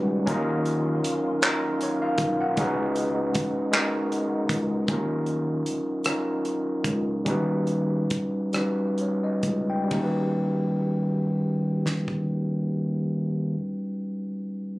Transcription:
Already playing: C#2 D#3 G3 B3 C#4 D#4 F#4 B4
0.25 D#2 D#3 F#3 A#3 C#4 D#4 F4, kick, closed hi-hat
0.30 A#4
0.66 closed hi-hat
1.04 B1, closed hi-hat
1.42 F#3 C#4 D#4, clap, closed hi-hat
1.46 F4 A#4
1.81 C#5, closed hi-hat
2.02 F5
2.18 B1, kick, closed hi-hat
2.41 F#5
2.57 C#2 C#3 G#3 B3 C#4 D#4 F#4, kick, closed hi-hat
2.62 B4
2.96 closed hi-hat
3.35 C#2, kick, closed hi-hat
3.72 G#3 C#4 D#4 F#4, clap, closed hi-hat
3.77 A#4
4.12 closed hi-hat
4.49 C#2, kick, closed hi-hat
4.88 D#2 F#3 C#4 D#4 F4, kick, closed hi-hat
4.93 A#4
5.26 closed hi-hat
5.66 C#2, closed hi-hat
6.04 F#3 C#4 D#4, cross-stick, closed hi-hat
6.09 F4 A#4
6.45 closed hi-hat
6.84 C#2, kick, closed hi-hat
7.25 D#2 G3 C#4 D#4, kick, closed hi-hat
7.29 F#4 B4
7.67 closed hi-hat
8.10 C#2, kick, closed hi-hat
8.53 G3 C#4 D#4 F#4, cross-stick, closed hi-hat
8.58 B4
8.98 C#5, closed hi-hat
9.24 D#5
9.43 C#2, kick, closed hi-hat
9.70 G5
9.83 G3
9.88 D#2 C#4, kick, ride
9.93 D#4
9.99 F#4
10.04 B4
11.86 snare
12.08 kick

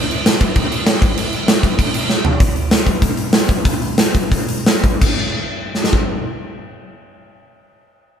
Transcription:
0.11 crash
0.26 snare, crash
0.40 kick, crash
0.56 kick, crash
0.72 crash
0.86 snare, crash
1.02 kick, crash
1.17 crash
1.33 crash
1.48 snare, crash
1.63 kick, crash
1.79 kick, crash
1.94 crash
2.10 snare
2.25 floor tom
2.40 kick, open hi-hat
2.56 open hi-hat
2.71 snare, open hi-hat
2.87 kick, open hi-hat
3.02 kick, open hi-hat
3.17 open hi-hat
3.33 snare, open hi-hat
3.48 kick, open hi-hat
3.65 kick, open hi-hat
3.82 open hi-hat
3.98 snare, open hi-hat
4.15 kick, open hi-hat
4.32 kick, open hi-hat
4.49 open hi-hat
4.66 snare, open hi-hat
4.84 kick, open hi-hat
5.02 kick, crash
5.75 snare
5.84 snare
5.93 kick

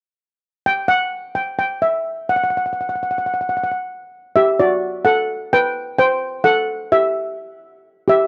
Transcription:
0.66 G5
0.88 F#5
1.35 G5
1.59 G5
1.82 E5
2.29 F#5
2.36 F#5
2.44 F#5
2.50 F#5
2.57 F#5
2.66 F#5
2.73 F#5
2.81 F#5
2.89 F#5
2.96 F#5
3.03 F#5
3.11 F#5
3.18 F#5
3.26 F#5
3.34 F#5
3.41 F#5
3.49 F#5
3.57 F#5
3.64 F#5
3.72 F#5
4.36 G4 E5
4.60 F#4 D5
5.05 A4 F#5
5.53 B4 G5
5.99 C5 G5
6.44 A4 F#5
6.92 G4 E5
8.08 G4 E5

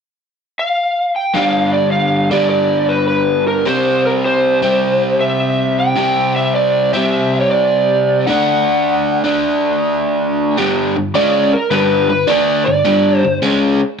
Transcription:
0.59 F5
1.16 G5
1.34 G2 D3 G3 F5
1.73 D5
1.92 F5
2.31 G2 D3 G3 D5
2.50 D5
2.89 B4
3.08 B4
3.47 A#4
3.65 C3 G3 C4 C5
4.06 A#4
4.26 C5
4.62 C3 G3 C4
5.20 E5
5.79 G5
5.96 C3 G3 C4
6.36 E5
6.55 D5
6.94 C3 G3 C4 E5
7.40 C#5
7.51 D5
8.27 D3 A3 D4 F#5
9.24 D3 A3 D4
10.57 G2 D3 G3
10.96 G2 D3
11.14 C#3 G#3 C#4 D5
11.53 A#4
11.71 G2 D3 G3 B4
12.10 G2 D3 B4
12.27 D3 A3 D4 D5
12.66 G2 D3 D5
12.85 G2 D3 G3
13.18 C5
13.24 G2 D3
13.42 C#3 G#3 C#4

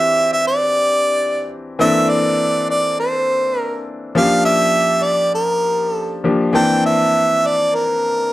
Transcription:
Already playing: E3 C4 D4 G4 E5
0.33 E5
0.47 D5
1.79 E3 A#3 C4 D4 A4 E5
2.10 D5
2.70 D5
3.00 C5
3.60 A#4
4.15 F3 A#3 C#4 G4 F5
4.22 D4
4.45 E5
5.03 D5
5.35 A#4
5.93 A4
6.24 F3 A#3 D4 G4
6.53 E3 A#3 C4 D4 G5 A5
6.86 E5
7.47 D5
7.75 A#4

